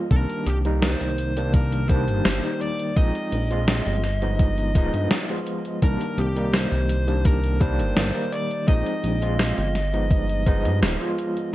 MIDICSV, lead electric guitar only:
0, 0, Header, 1, 2, 480
1, 0, Start_track
1, 0, Key_signature, -3, "minor"
1, 0, Tempo, 714286
1, 74, Time_signature, 4, 2, 24, 8
1, 7761, End_track
2, 0, Start_track
2, 0, Title_t, "Lead electric guitar"
2, 0, Program_c, 0, 29
2, 75, Note_on_c, 0, 70, 91
2, 312, Note_on_c, 0, 67, 81
2, 322, Note_off_c, 0, 70, 0
2, 377, Note_off_c, 0, 67, 0
2, 554, Note_on_c, 0, 72, 97
2, 1032, Note_off_c, 0, 72, 0
2, 1035, Note_on_c, 0, 70, 97
2, 1268, Note_off_c, 0, 70, 0
2, 1271, Note_on_c, 0, 72, 99
2, 1504, Note_off_c, 0, 72, 0
2, 1512, Note_on_c, 0, 72, 100
2, 1736, Note_off_c, 0, 72, 0
2, 1756, Note_on_c, 0, 74, 104
2, 1991, Note_off_c, 0, 74, 0
2, 1994, Note_on_c, 0, 75, 99
2, 3407, Note_off_c, 0, 75, 0
2, 3918, Note_on_c, 0, 70, 92
2, 4159, Note_on_c, 0, 67, 84
2, 4163, Note_off_c, 0, 70, 0
2, 4403, Note_off_c, 0, 67, 0
2, 4404, Note_on_c, 0, 72, 92
2, 4876, Note_off_c, 0, 72, 0
2, 4878, Note_on_c, 0, 70, 93
2, 5115, Note_off_c, 0, 70, 0
2, 5118, Note_on_c, 0, 72, 99
2, 5346, Note_off_c, 0, 72, 0
2, 5354, Note_on_c, 0, 72, 102
2, 5594, Note_on_c, 0, 74, 106
2, 5601, Note_off_c, 0, 72, 0
2, 5817, Note_off_c, 0, 74, 0
2, 5832, Note_on_c, 0, 75, 100
2, 7246, Note_off_c, 0, 75, 0
2, 7761, End_track
0, 0, End_of_file